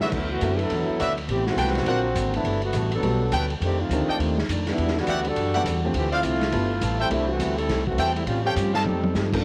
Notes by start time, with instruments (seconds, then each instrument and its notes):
0.01 trombone section F#3 A3 B3 E4, trumpet section F#4 B4 D5 E5, muted upright bass stroke, snare
0.12 upright bass D2, hollow-body jazz guitar D3 F#3 B3, kick, crash
0.16 hollow-body jazz guitar E4
0.30 trombone section E3 A3 B3 F#4
0.41 upright bass F#2, hollow-body jazz guitar D3 F#3 B3 E4, grand piano F#3 A3 B3 D4 E4, hi-hat pedal, ride
0.58 trombone section F#3 B3 E4 A4, ride
0.70 upright bass E2, hollow-body jazz guitar D3 F#3 B3, ride
0.74 hollow-body jazz guitar E4
0.89 muted upright bass stroke
0.99 upright bass D2, hollow-body jazz guitar D3 F#3 B3 E4, trumpet section F#4 B4 D5 E5, hi-hat pedal, ride
1.18 ride
1.28 upright bass A1, trombone section E3 B3 C4 G4, hollow-body jazz guitar A3 C4 G4 B4, ride
1.46 trombone section E3 B3 C4 F#4, snare
1.56 upright bass C2, hollow-body jazz guitar A3 C4 G4 B4, trumpet section A4 B4 C5 G5, hi-hat pedal, ride
1.67 snare
1.75 snare, ride
1.86 upright bass A#1, hollow-body jazz guitar D3 A#3 C4, grand piano F#3 A#3 C4 D4 F4, trumpet section A#4 C5 D5 F#5, ride
1.90 hollow-body jazz guitar F#4
2.15 upright bass G#1, hollow-body jazz guitar D3 A#3 C4 F#4, hi-hat pedal, ride
2.34 trombone section A3 B3 D4 E4, ride
2.44 upright bass G1, hollow-body jazz guitar G3 B3 F#4 A4, ride
2.62 trombone section D3 A3 B3 F#4, ride
2.73 upright bass A1, hollow-body jazz guitar G3 B3 F#4 A4, hi-hat pedal, ride
2.92 trombone section F#3 B3 D4 A4, ride
3.02 upright bass B1, hollow-body jazz guitar G3 B3 F#4, grand piano G3 A3 B3 D4 F#4, ride
3.07 hollow-body jazz guitar A4
3.32 upright bass D2, hollow-body jazz guitar G3 B3 F#4 A4, trumpet section A4 B4 F#5 G5, hi-hat pedal, ride
3.50 ride
3.60 upright bass F2, hollow-body jazz guitar F2 D#3 A3, trombone section D#3 A3 C4 G4, ride
3.65 hollow-body jazz guitar D4
3.79 trombone section A3 C4 D#4 F4
3.89 upright bass D2, hollow-body jazz guitar F2 D#3 A3, grand piano D#3 A3 C4 D4 G4, hi-hat pedal, ride
3.93 hollow-body jazz guitar D4
4.08 trumpet section A4 D5 D#5 G5, muted upright bass stroke
4.19 upright bass D#2, hollow-body jazz guitar F2 D#3 A3, ride
4.23 hollow-body jazz guitar D4
4.38 snare
4.48 upright bass F2, hollow-body jazz guitar F2 D#3 A3 D4, hi-hat pedal, ride
4.67 trombone section G3 B3 D4 E4, snare, ride
4.78 upright bass E2, hollow-body jazz guitar E3 G3 D4 F#4, ride
4.88 snare
4.97 trombone section D3 G3 B3 F#4, snare
5.07 upright bass D2, hollow-body jazz guitar E3 G3 D4 F#4, trumpet section G4 D5 E5 F#5, hi-hat pedal, ride
5.25 trombone section G3 D4 F#4 A4, ride
5.36 upright bass F#2, hollow-body jazz guitar E3 G3 D4 F#4, ride
5.53 grand piano E3 G3 B3 D4 F#4, trumpet section G4 D5 E5 F#5, ride
5.64 upright bass E2, hollow-body jazz guitar E3 G3 D4, hi-hat pedal, ride
5.68 hollow-body jazz guitar F#4
5.85 grand piano F3 A3 C4 D4 G4
5.94 upright bass D2, hollow-body jazz guitar D3 F3 C4, trombone section E3 A3 C4 G4, ride
5.98 hollow-body jazz guitar E4
6.12 trombone section A3 C4 E4 F4, trumpet section C5 D5 E5 F5, ride
6.23 upright bass C2, hollow-body jazz guitar D3 F3 C4 E4, hi-hat pedal, ride
6.41 snare, ride
6.52 upright bass G1, hollow-body jazz guitar G3 B3 F4 A4, grand piano G3 A3 B3 D4 F4, ride
6.81 upright bass A1, hollow-body jazz guitar G3 B3 F4 A4, hi-hat pedal, ride
7.00 trombone section G3 A3 C4 E4, trumpet section A4 C5 E5 G5
7.10 upright bass C2, hollow-body jazz guitar C3 G3 A3, grand piano G3 A3 C4 D4 E4, ride
7.14 hollow-body jazz guitar E4
7.29 trombone section E3 A3 C4 F#4
7.39 upright bass D2, hollow-body jazz guitar C3 G3 A3 E4, hi-hat pedal, ride
7.57 trombone section G3 C4 E4 A4, ride
7.69 upright bass C2, hollow-body jazz guitar C3 G3 A3, snare, ride
7.73 hollow-body jazz guitar E4
7.86 trombone section E3 A3 C4 F#4, kick
7.98 upright bass E2, hollow-body jazz guitar C3 G3 A3 E4, trumpet section A4 C5 E5 G5, hi-hat pedal, ride
8.16 trombone section G3 A3 C4 E4, ride
8.26 upright bass A2, hollow-body jazz guitar A2 G3, trombone section G3 C4 C#4 F4, ride
8.30 hollow-body jazz guitar C#4 F4
8.44 trombone section F3 C4 C#4 G4, trumpet section A4 C#5 F5 G5
8.56 upright bass G2, hollow-body jazz guitar A2 G3 C#4, hi-hat pedal, ride
8.60 hollow-body jazz guitar F4
8.74 trombone section G3 C4 D#4 A4, trumpet section A4 D#5 F5 A5, snare, ride
8.85 upright bass F2, hollow-body jazz guitar F3 A3 D#4, high tom
8.90 hollow-body jazz guitar G4
9.03 high tom
9.15 upright bass G2, hollow-body jazz guitar F3 A3 D#4, snare, hi-hat pedal
9.19 hollow-body jazz guitar G4
9.32 grand piano F3 A#3 C4 D4 A4, kick, crash